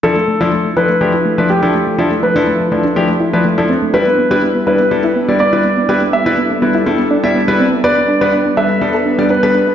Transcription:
0.03 F3 D4 E4 F4 A4
0.16 A3
0.28 A3
0.41 F3 D4 E4 F4 A4
0.52 A3
0.65 A3
0.77 F3 D4 E4 A4 B4
0.89 A3
1.01 F3 A3 D4 E4 G4
1.14 E4
1.25 A3
1.38 F3 A3 D4 E4 B4
1.50 A3 G4
1.63 F3 D4 E4 A4
1.74 A3
1.87 A3
1.99 F3 D4 E4 F4 A4
2.11 A3
2.23 A3 B4
2.36 F3 D4 E4 A4
2.47 A3
2.60 A3
2.72 F3 A3 D4 E4 A4
2.85 D4
2.96 F3 A3 D4 E4 G4
3.09 A3
3.20 E4
3.33 F3 A3 D4 E4 B4
3.45 A3
3.58 F3 A3 D4 E4 A4
3.69 C4
3.82 A3
3.94 G3 D4 E4 G4 B4
4.06 B3
4.18 B3
4.31 G3 D4 E4 G4 B4
4.42 B3
4.55 B3
4.67 G3 D4 E4 B4
4.80 B3
4.91 G3 B3 D4 E4 A4
5.04 E4
5.16 B3
5.28 G3 B3 D4 E4 D5
5.40 B3 D5
5.53 G3 D4 E4 B4
5.64 B3
5.77 B3
5.89 G3 D4 E4 G4 A4 B4
6.02 B3
6.13 B3 E5
6.26 G3 D4 E4 B4
6.38 B3
6.50 B3
6.62 G3 B3 D4 E4 B4
6.75 E4
6.86 G3 B3 D4 E4 A4
6.99 B3
7.11 D4
7.24 G3 B3 D4 E4 E5
7.35 B3
7.48 G3 B3 D4 E4 B4
7.60 C4
7.72 B3
7.84 G3 B3 D4 B4 D5
7.97 D4
8.08 D4
8.21 G3 B3 D4 B4
8.33 D4
8.46 D4
8.57 G3 B3 D4 A4 B4 E5
8.70 D4
8.81 G3 B3 D4 A4
8.94 A4
9.06 D4
9.19 G3 B3 D4 D5
9.30 D4 B4
9.43 G3 B3 D4 A4 B4
9.55 D4
9.67 D4

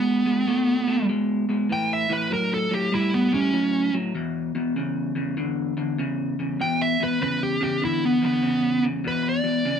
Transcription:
Already playing: B2 G#3 B3
0.26 B2 G#3
0.47 B2 A3
0.87 B2 A3
1.09 B2 G#3
1.49 B2 G#3
1.69 A2 E3 G5
1.93 E5
2.09 A2 E3 B4
2.30 A2 F#3 A#4
2.54 A4
2.71 A2 F#3 G4
2.92 A2 G3 E4
3.14 B3
3.32 A2 G3 C#4
3.53 A2 F#3
3.93 A2 F#3
4.15 E2 B2
4.55 E2 B2
4.76 E2 C#3
5.15 E2 C#3
5.37 E2 D3
5.77 E2 D3
5.98 E2 C#3
6.39 E2 C#3
6.60 E2 B2 G5
6.82 E5
7.00 E2 B2 B4
7.21 E2 C#3 B4
7.43 G4
7.61 E2 C#3 G4
7.82 E2 D3 E4
8.05 B3
8.22 E2 D3 B3
8.43 E2 C#3
8.82 E2 C#3
9.04 E2 B2 B4
9.29 D5
9.44 E2 B2
9.65 E2 C#3

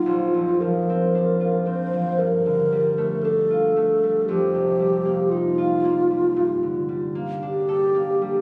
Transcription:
Already playing: A#3 F4
0.06 A#1
0.34 F2
0.61 F3 A#4
0.90 C4
1.15 D4
1.40 F4
1.66 C4 C5
1.93 F3
2.19 G2 A#4
2.46 D3
2.72 G3
2.98 A3
3.23 D4 A4
3.50 F4
3.76 A3
4.03 G3
4.29 F2 G4
4.54 C3
4.80 G3
5.05 A#3
5.30 D#4 F4
5.58 F4
5.84 A#3
6.11 G3
6.36 G2
6.63 D3
6.89 G3
7.15 A#3
7.43 D4 G4
7.69 A4
7.94 A#3
8.22 G3

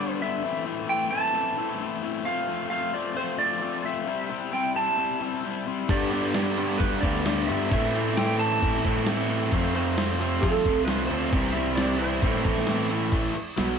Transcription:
Already playing: G2 D5
0.00 D3 G3 B3 D4
0.21 G2 D3 G3 B3 D4 E5
0.44 A2 E3 A3 C4 E4
0.65 A2 E3 A3 C4 E4
0.87 A2 E3 A3 C4 E4 G5
1.11 A2 E3 A3 C4 E4 A5
1.34 A2 E3 A3 C4 E4
1.57 A2 E3 A3 C4 E4
1.80 A2 E3 A3 C4 E4
2.02 A2 E3 A3 C4 E4
2.25 F3 A3 C4 F4 F5
2.48 F3 A3 C4 F4
2.70 F3 A3 C4 F4 F5
2.93 F3 A3 C4 F4 D5
3.16 F3 A3 C4 F4 C5
3.38 F3 A3 C4 F4 D5
3.62 F3 A3 C4 F4
3.84 F3 A3 C4 F4 E5
4.07 C3 G3 C4 E4
4.30 C3 G3 C4 E4
4.52 C3 G3 C4 E4 G5
4.75 C3 G3 C4 E4 A5
4.98 C3 G3 C4 E4
5.21 C3 G3 C4 E4
5.44 C3 G3 C4 E4
5.67 C3 G3 C4 E4
5.89 G2 D3 G3 B3 D4 G4 D5, kick, crash
6.12 G2 D3 G3 B3 D4 G4, crash
6.34 G2 D3 G3 B3 D4 G4 D5, snare, crash
6.57 G2 D3 G3 B3 D4 G4, crash
6.78 G2 D3 G3 B3 D4 G4 B4, kick, crash
7.01 D2 G2 D3 G3 G4 D5, kick, crash
7.05 B3 D4
7.15 snare
7.25 G2 D3 G3 B3 D4 G4, snare, crash
7.47 G2 D3 G3 B3 D4 G4 E5, crash
7.71 A2 E3 A3 C4 E4, kick, crash
7.94 A2 E3 A3 C4 E4, crash
8.17 A2 E3 A3 C4 E4 G5, snare, crash
8.39 A2 E3 A3 C4 E4 A5, crash
8.62 A2 E3 A3 C4 E4, kick, crash
8.84 A2 E3 A3 C4 E4, kick, crash
8.96 snare
9.06 A2 E3 A3 C4 E4, snare, crash
9.29 A2 E3 A3 C4 E4, crash
9.51 F2 C3 F3 A3 C4 F4 C5, kick, crash
9.74 F2 C3 F3 A3 C4 F4 C5, crash
9.97 F2 C3 F3 A3 C4 F4 C5, snare, crash
10.19 F2 C3 F3 A3 C4 F4, crash
10.41 F2 C3 F3 A3 C4 F4 A4, kick, crash
10.56 snare
10.65 C2 F2 C3 F3 A3 C4 F4, kick, crash
10.85 F2 C3 F3 A3 C4 F4 B4, snare, crash
11.07 D2 F2 C3 F3 A3 C4 F4 C5, crash
11.31 C2 C3 E3 G3 C4 E4, kick, crash
11.52 C3 E3 G3 C4 E5, crash
11.56 E4
11.75 C3 E3 G3 C4 E4 D5, snare, crash
11.99 C3 E3 G3 C4 E4 C5, crash
12.22 A1 A2 E3 A3 C4 E4, kick, crash
12.34 snare
12.44 A1 A2 E3 A3 C4 E4, kick, crash
12.56 B4, snare
12.67 A2 E3 A3 C4 E4, snare, crash
12.90 A2 E3 A3 C4 E4, crash
13.12 A1 A2 E3 A3, kick, crash
13.34 muted overdriven electric guitar stroke, muted picked electric bass stroke, muted distorted electric guitar stroke, crash
13.57 B1 B2 F#3 B3, snare, crash

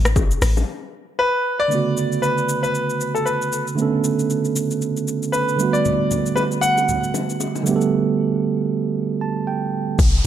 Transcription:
Already playing: A1
0.05 cross-stick, shaker
0.16 kick, high bongo, shaker
0.31 shaker
0.42 A1, cross-stick, open hi-hat, shaker
0.57 high bongo, low bongo, shaker
1.19 B4
1.60 D5
1.68 D3 A3 B3, shaker
1.73 C#3 F#4
1.97 shaker
2.12 shaker
2.22 B4, shaker
2.38 shaker
2.49 shaker
2.63 B4, shaker
2.75 shaker
2.90 shaker
3.01 shaker
3.15 A4, shaker
3.26 B4, shaker
3.42 shaker
3.52 shaker
3.67 shaker
3.75 D3 A3 B3, shaker
3.80 C#4 A4
4.04 shaker
4.19 shaker
4.30 shaker
4.45 shaker
4.56 shaker
4.71 shaker
4.82 shaker
4.97 shaker
5.08 shaker
5.23 shaker
5.32 B4, shaker
5.49 shaker
5.56 D3 G3 A3, shaker
5.61 B3 F#4
5.73 D5, shaker
5.85 low conga, shaker
6.11 low bongo, low conga, shaker
6.26 shaker
6.36 B4, high bongo, shaker
6.52 shaker
6.61 F#5, shaker
6.78 high bongo, shaker
6.89 low conga, shaker
7.04 shaker
7.14 high bongo, low bongo, shaker
7.30 shaker
7.40 high bongo, shaker
7.55 low bongo, shaker
7.63 D3 G3 A3, shaker
7.68 B3 G4
7.76 A4
7.81 shaker
9.21 A5
9.47 G5
9.99 B1, kick, downlifter, shaker

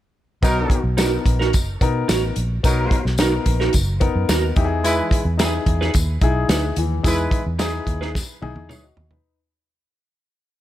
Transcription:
0.42 B1 B2 F#3 B3 D#4 A#4, kick, closed hi-hat, tambourine
0.70 kick, closed hi-hat
0.84 B1
0.97 B3 D4 D#4 F#4 A#4, snare, closed hi-hat, tambourine
1.05 D#4
1.26 A#1, kick, closed hi-hat
1.39 D#4 F#4 A#4, snare
1.53 F#1, kick, closed hi-hat, tambourine
1.81 B2 B3 D#4 A#4, kick, closed hi-hat
2.08 A1 D#4 F#4 A#4, snare, closed hi-hat, tambourine
2.36 A#1, closed hi-hat
2.63 B1 B2 F#3 B3 D#4 A#4, kick, closed hi-hat, tambourine
2.91 kick, closed hi-hat
3.05 B1, snare
3.18 B3 D#4 F#4 A#4, snare, closed hi-hat, tambourine
3.46 A#1, kick, closed hi-hat
3.60 D#4 F#4 A#4, snare
3.73 F#1, kick, closed hi-hat, tambourine
4.00 B3 D#4 A#4, kick, closed hi-hat
4.16 F#2
4.29 D#2 D#4 F#4 A#4, snare, closed hi-hat, tambourine
4.56 E2 E3 D#4 E4 G4, kick, closed hi-hat
4.65 G#4
4.84 G#3 E4 B4, closed hi-hat, tambourine
5.11 kick, closed hi-hat
5.25 E2
5.37 D#4 E4 G4 G#4 B4, snare, closed hi-hat, tambourine
5.45 G#4
5.66 E2, kick, closed hi-hat
5.81 D#4 G#4 B4, snare
5.94 D#2, kick, closed hi-hat, tambourine
6.21 B1 D#4 E4 G#4, kick, closed hi-hat
6.49 D2 D#4 G#4 B4, snare, closed hi-hat, tambourine
6.76 D#2 E3, closed hi-hat
7.03 E2 G#3 D#4 E4 G#4 B4, kick, closed hi-hat, tambourine
7.31 kick, closed hi-hat
7.46 E2
7.59 D#4 E4 G#4 B4, snare, closed hi-hat, tambourine
7.87 D#2, kick, closed hi-hat
8.01 D#4 G#4 B4, snare
8.15 kick, snare, tambourine
8.42 B1 D#4 E4 G#4, high tom
8.56 E2, high tom
8.69 D2 D#4 E4 G#4 B4 C#5, mid tom, tambourine
8.83 F#4 D#5
8.97 D#2, floor tom
9.10 D#4 B4, floor tom

